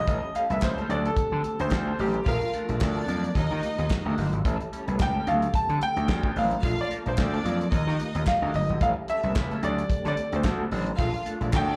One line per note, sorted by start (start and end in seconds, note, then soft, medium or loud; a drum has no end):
0.00 2.23 G4 medium
0.00 0.37 D#5 loud
0.07 0.19 A1 loud
0.07 0.23 G3 medium
0.07 2.24 A3 medium
0.07 0.88 C#4 medium
0.07 0.22 C#4 medium
0.07 0.22 E4 medium
0.07 0.22 A4 medium
0.07 kick loud
0.07 closed hi-hat medium
0.07 muted conga soft
0.23 muted clean electric guitar stroke soft
0.23 muted conga soft
0.35 0.47 G3 medium
0.35 0.47 C#4 medium
0.35 0.47 E4 medium
0.35 0.48 A4 medium
0.35 0.51 F5 loud
0.35 closed hi-hat medium
0.50 0.59 C2 medium
0.50 0.60 G3 soft
0.50 0.60 C#4 soft
0.50 0.60 E4 soft
0.50 0.60 B4 medium
0.50 0.62 E5 loud
0.50 closed hi-hat soft
0.50 high conga medium
0.62 0.82 C#2 loud
0.62 0.91 C5 medium
0.62 muted clean electric guitar stroke soft
0.62 kick loud
0.62 snare loud
0.62 clap loud
0.62 clap medium
0.62 muted conga soft
0.77 0.88 G3 medium
0.77 0.90 C#4 medium
0.77 0.90 E4 medium
0.77 0.90 A4 loud
0.77 closed hi-hat soft
0.77 muted conga soft
0.77 high conga medium
0.88 1.09 D2 medium
0.88 2.25 D3 medium
0.88 1.02 G3 medium
0.88 2.25 C4 medium
0.88 1.02 C4 medium
0.88 1.02 D4 medium
0.88 1.03 A4 medium
0.88 1.04 D5 medium
0.88 closed hi-hat medium
0.88 low conga medium
1.05 1.62 A4 medium
1.05 muted clean electric guitar stroke soft
1.05 closed hi-hat soft
1.17 muted slap bass stroke soft
1.17 muted clean electric guitar stroke soft
1.17 kick loud
1.17 closed hi-hat medium
1.17 muted conga soft
1.31 1.41 D3 medium
1.31 1.43 G3 medium
1.31 1.43 C4 medium
1.31 1.44 D4 medium
1.31 1.44 A4 medium
1.31 muted conga soft
1.43 muted clean electric guitar stroke soft
1.43 closed hi-hat medium
1.43 high conga medium
1.59 1.68 D2 medium
1.59 1.97 C5 loud
1.59 muted clean electric guitar stroke soft
1.59 closed hi-hat medium
1.59 high conga medium
1.71 1.91 D2 loud
1.71 muted clean electric guitar stroke soft
1.71 kick medium
1.71 snare loud
1.71 clap medium
1.71 muted conga soft
1.73 clap medium
1.87 1.99 G3 medium
1.87 1.99 C4 medium
1.87 1.99 D4 medium
1.87 1.99 A4 medium
1.87 muted conga soft
1.87 high conga medium
1.99 2.18 A1 medium
1.99 2.12 G3 medium
1.99 2.12 C4 medium
1.99 2.12 D4 medium
1.99 2.25 G4 medium
1.99 2.12 C5 medium
1.99 open hi-hat medium
1.99 low conga medium
2.14 muted clean electric guitar stroke medium
2.14 closed hi-hat soft
2.26 2.37 A#1 loud
2.26 3.34 F3 medium
2.26 2.42 A3 medium
2.26 4.43 A#3 medium
2.26 2.41 D4 medium
2.26 4.43 F4 medium
2.26 2.48 F4 loud
2.26 2.41 F4 medium
2.26 2.41 A4 medium
2.26 3.60 A#4 medium
2.26 2.48 F5 loud
2.26 kick loud
2.26 closed hi-hat medium
2.41 muted clean electric guitar stroke soft
2.41 closed hi-hat soft
2.41 muted conga soft
2.54 2.66 A3 medium
2.54 2.66 D4 medium
2.54 2.66 F4 medium
2.54 2.66 A4 medium
2.54 closed hi-hat medium
2.68 2.77 A#1 medium
2.68 2.79 A3 soft
2.68 2.79 D4 soft
2.68 2.79 D4 medium
2.68 2.79 F4 soft
2.68 2.78 C5 medium
2.68 2.79 D5 medium
2.68 closed hi-hat soft
2.68 high conga medium
2.80 3.01 D2 medium
2.80 3.32 D4 loud
2.80 3.32 D5 loud
2.80 muted clean electric guitar stroke soft
2.80 kick loud
2.80 snare loud
2.80 clap loud
2.80 clap medium
2.80 muted conga soft
2.96 3.07 A3 medium
2.96 3.07 D4 medium
2.96 3.08 F4 medium
2.96 3.08 A4 medium
2.96 muted conga soft
2.96 high conga medium
3.07 3.28 F2 medium
3.07 3.20 A3 medium
3.07 3.21 D4 medium
3.07 3.21 F4 medium
3.07 3.21 A4 medium
3.07 closed hi-hat medium
3.07 low conga medium
3.24 closed hi-hat soft
3.35 3.46 D#2 loud
3.35 4.44 D#3 medium
3.35 4.14 D#4 loud
3.35 6.60 G4 medium
3.35 4.14 D#5 loud
3.35 muted clean electric guitar stroke soft
3.35 kick loud
3.35 closed hi-hat medium
3.51 3.59 D#3 medium
3.51 3.61 A#3 medium
3.51 3.62 D4 medium
3.51 3.62 G4 medium
3.51 3.62 A#4 medium
3.62 muted clean electric guitar stroke soft
3.62 closed hi-hat medium
3.62 high conga medium
3.78 3.87 D#2 medium
3.78 muted clean electric guitar stroke soft
3.78 closed hi-hat medium
3.78 high conga medium
3.90 muted clean electric guitar stroke soft
3.90 kick medium
3.90 snare loud
3.90 clap medium
3.90 muted conga soft
3.92 clap medium
4.05 4.14 D2 medium
4.05 4.16 A#3 medium
4.05 4.17 D4 medium
4.05 4.17 G4 medium
4.05 4.18 A#4 medium
4.05 muted conga soft
4.05 high conga medium
4.17 4.28 G1 medium
4.17 4.30 A#3 medium
4.17 4.30 D4 medium
4.17 4.30 G4 medium
4.17 4.30 C5 medium
4.17 open hi-hat medium
4.17 low conga medium
4.32 4.41 G#1 medium
4.32 muted clean electric guitar stroke soft
4.32 closed hi-hat soft
4.45 4.56 A1 loud
4.45 4.60 G3 medium
4.45 7.69 A3 medium
4.45 5.26 C#4 medium
4.45 4.60 C#4 medium
4.45 4.60 E4 medium
4.45 4.59 A4 medium
4.45 kick loud
4.45 closed hi-hat medium
4.45 muted conga soft
4.60 muted clean electric guitar stroke soft
4.60 closed hi-hat soft
4.60 muted conga soft
4.72 4.84 G3 medium
4.72 4.85 C#4 medium
4.72 4.85 E4 medium
4.72 4.85 A4 medium
4.72 closed hi-hat medium
4.87 4.96 C2 medium
4.87 4.98 G3 soft
4.87 4.97 C#4 soft
4.87 4.97 E4 medium
4.87 4.97 B4 medium
4.87 closed hi-hat soft
4.87 high conga medium
4.99 5.19 C#2 medium
4.99 5.26 G5 loud
4.99 muted clean electric guitar stroke soft
4.99 kick loud
4.99 snare loud
4.99 clap loud
4.99 clap medium
4.99 muted conga soft
5.14 5.25 G3 medium
5.14 5.26 C#4 medium
5.14 5.27 E4 medium
5.14 5.26 A4 medium
5.14 high conga medium
5.26 5.46 D2 medium
5.26 6.62 D3 medium
5.26 5.39 G3 medium
5.26 5.39 C4 medium
5.26 6.62 C4 medium
5.26 5.39 D4 medium
5.26 5.39 A4 medium
5.26 5.56 F5 medium
5.26 closed hi-hat medium
5.26 low conga medium
5.41 muted clean electric guitar stroke soft
5.41 closed hi-hat medium
5.53 5.83 A5 loud
5.53 muted clean electric guitar stroke soft
5.53 muted slap bass stroke soft
5.53 kick loud
5.53 closed hi-hat medium
5.53 muted conga soft
5.69 5.78 D3 medium
5.69 5.80 G3 medium
5.69 5.80 C4 medium
5.69 5.81 D4 medium
5.69 5.81 A4 medium
5.69 closed hi-hat soft
5.81 6.38 G5 loud
5.81 muted clean electric guitar stroke soft
5.81 closed hi-hat medium
5.81 high conga medium
5.97 6.05 D2 medium
5.97 muted clean electric guitar stroke soft
5.97 closed hi-hat soft
5.97 high conga medium
6.08 6.28 D2 loud
6.08 muted clean electric guitar stroke soft
6.08 kick loud
6.08 snare loud
6.08 clap medium
6.23 6.34 G3 medium
6.23 6.35 C4 medium
6.23 6.35 D4 medium
6.23 6.36 A4 medium
6.23 kick loud
6.23 high conga medium
6.35 6.55 A1 medium
6.35 6.48 G3 medium
6.35 6.48 C4 medium
6.35 6.48 D4 medium
6.35 6.48 C5 medium
6.35 6.81 F5 medium
6.35 open hi-hat medium
6.35 low conga medium
6.51 muted clean electric guitar stroke medium
6.51 closed hi-hat soft
6.63 6.74 A#1 medium
6.63 6.79 F3 medium
6.63 6.78 A#3 medium
6.63 8.79 A#3 medium
6.63 6.78 D4 medium
6.63 6.85 F4 medium
6.63 8.79 F4 medium
6.63 6.77 A4 medium
6.63 6.85 F5 loud
6.63 kick loud
6.63 closed hi-hat medium
6.63 muted conga soft
6.78 6.87 D5 medium
6.78 muted clean electric guitar stroke soft
6.78 closed hi-hat soft
6.91 7.03 F3 medium
6.91 7.03 A#3 medium
6.91 7.03 D4 medium
6.91 7.03 A4 medium
6.91 closed hi-hat medium
7.06 7.14 A#1 medium
7.06 7.16 F3 soft
7.06 7.16 A#3 soft
7.06 7.15 D4 medium
7.06 7.16 D4 medium
7.06 7.15 A#4 medium
7.06 7.32 C5 medium
7.06 7.15 D5 medium
7.06 closed hi-hat soft
7.06 high conga medium
7.17 7.37 D2 medium
7.17 7.69 D4 loud
7.17 7.69 D5 loud
7.17 muted clean electric guitar stroke soft
7.17 kick loud
7.17 snare medium
7.17 clap loud
7.19 clap medium
7.33 7.43 F3 medium
7.33 7.44 A#3 medium
7.33 7.45 D4 medium
7.33 7.45 A4 medium
7.33 closed hi-hat soft
7.33 high conga medium
7.44 7.64 F2 medium
7.44 7.57 F3 medium
7.44 7.57 A#3 medium
7.44 7.58 D4 medium
7.44 7.58 A4 medium
7.44 closed hi-hat medium
7.44 low conga medium
7.61 muted clean electric guitar stroke soft
7.61 closed hi-hat soft
7.71 7.83 D#2 loud
7.71 8.80 D#3 medium
7.71 8.50 D#4 medium
7.71 9.61 G4 medium
7.71 8.49 D#5 loud
7.71 muted clean electric guitar stroke soft
7.71 kick loud
7.71 closed hi-hat medium
7.87 7.96 D#3 medium
7.87 7.98 A#3 medium
7.87 7.99 D4 medium
7.87 7.99 G4 medium
7.87 7.99 A#4 medium
7.87 snare soft
7.99 muted clean electric guitar stroke soft
7.99 closed hi-hat medium
7.99 high conga medium
8.14 8.23 D#2 medium
8.14 muted clean electric guitar stroke medium
8.14 closed hi-hat soft
8.14 high conga medium
8.26 8.53 F5 loud
8.26 muted clean electric guitar stroke soft
8.26 kick medium
8.26 snare loud
8.26 clap loud
8.28 clap medium
8.42 8.51 D2 medium
8.42 8.53 A#3 medium
8.42 8.53 D4 medium
8.42 8.53 G4 medium
8.42 8.54 A#4 medium
8.42 high conga medium
8.54 8.65 G1 loud
8.54 8.83 D#5 medium
8.54 muted clean electric guitar stroke soft
8.54 open hi-hat medium
8.54 low conga medium
8.69 8.78 G#1 medium
8.69 muted clean electric guitar stroke soft
8.69 closed hi-hat soft
8.80 8.92 A1 loud
8.80 8.96 G3 medium
8.80 10.97 A3 medium
8.80 8.96 C#4 medium
8.80 9.62 C#4 medium
8.80 8.96 E4 medium
8.80 8.95 A4 medium
8.80 8.88 F5 loud
8.80 kick loud
8.80 closed hi-hat medium
8.80 muted conga soft
8.96 muted clean electric guitar stroke soft
9.08 9.20 G3 medium
9.08 9.21 C#4 medium
9.08 9.21 E4 medium
9.08 9.21 A4 medium
9.08 9.60 E5 loud
9.08 closed hi-hat medium
9.23 9.32 C2 medium
9.23 9.34 G3 soft
9.23 9.33 C#4 soft
9.23 9.33 E4 medium
9.23 9.33 B4 medium
9.23 closed hi-hat soft
9.23 high conga medium
9.35 9.55 C#2 medium
9.35 muted clean electric guitar stroke soft
9.35 kick loud
9.35 snare loud
9.35 clap loud
9.35 clap medium
9.50 9.61 G3 medium
9.50 9.62 C#4 medium
9.50 9.63 E4 medium
9.50 9.62 A4 medium
9.50 closed hi-hat soft
9.50 muted conga soft
9.50 high conga medium
9.61 9.82 D2 medium
9.61 10.98 D3 medium
9.61 9.74 G3 medium
9.61 9.75 C4 medium
9.61 10.98 C4 medium
9.61 9.75 D4 medium
9.61 10.98 G4 medium
9.61 9.75 A4 medium
9.61 10.03 D5 medium
9.61 closed hi-hat medium
9.61 low conga medium
9.78 muted clean electric guitar stroke soft
9.78 closed hi-hat medium
9.90 muted clean electric guitar stroke soft
9.90 muted slap bass stroke soft
9.90 kick loud
9.90 closed hi-hat medium
9.90 muted conga soft
10.05 10.14 D3 medium
10.05 10.16 G3 medium
10.05 10.16 C4 medium
10.05 10.16 D4 medium
10.05 10.17 A4 medium
10.05 10.34 D5 medium
10.05 snare soft
10.05 closed hi-hat soft
10.05 muted conga soft
10.16 muted clean electric guitar stroke soft
10.16 closed hi-hat medium
10.16 high conga medium
10.32 10.41 D2 medium
10.32 10.59 C5 medium
10.32 muted clean electric guitar stroke soft
10.32 closed hi-hat medium
10.32 high conga medium
10.44 10.64 D2 medium
10.44 kick loud
10.44 snare loud
10.44 clap medium
10.44 muted conga soft
10.46 clap medium
10.59 10.70 G3 medium
10.59 10.70 C4 medium
10.59 10.69 D4 medium
10.59 10.69 A4 medium
10.59 high conga medium
10.71 10.91 A1 loud
10.71 10.87 G3 medium
10.71 10.87 C4 medium
10.71 10.86 D4 medium
10.71 10.87 C5 loud
10.71 open hi-hat medium
10.71 low conga medium
10.86 muted clean electric guitar stroke soft
10.86 closed hi-hat soft
10.98 11.09 A#1 loud
10.98 11.14 A3 medium
10.98 11.76 A3 medium
10.98 11.76 A#3 medium
10.98 11.76 D4 medium
10.98 11.14 D4 medium
10.98 11.20 F4 loud
10.98 11.13 F4 loud
10.98 11.13 A4 medium
10.98 11.20 F5 loud
10.98 kick loud
10.98 closed hi-hat medium
11.14 muted clean electric guitar stroke soft
11.14 closed hi-hat soft
11.26 11.38 A3 medium
11.26 11.38 D4 medium
11.26 11.38 F4 medium
11.26 11.38 A4 medium
11.26 closed hi-hat medium
11.41 11.49 A#1 medium
11.41 11.51 A3 soft
11.41 11.50 D4 medium
11.41 11.51 D4 soft
11.41 11.51 F4 medium
11.41 11.50 C5 medium
11.41 11.50 D5 medium
11.41 closed hi-hat soft
11.41 high conga medium
11.52 11.72 D2 loud
11.52 11.76 D4 loud
11.52 11.76 D5 loud
11.52 muted clean electric guitar stroke soft
11.52 kick loud
11.52 snare loud
11.52 clap loud
11.52 clap medium
11.56 11.76 G5 loud
11.68 11.76 A3 medium
11.68 11.76 D4 medium
11.68 11.76 F4 medium
11.68 11.76 A4 medium
11.68 muted conga soft
11.68 high conga medium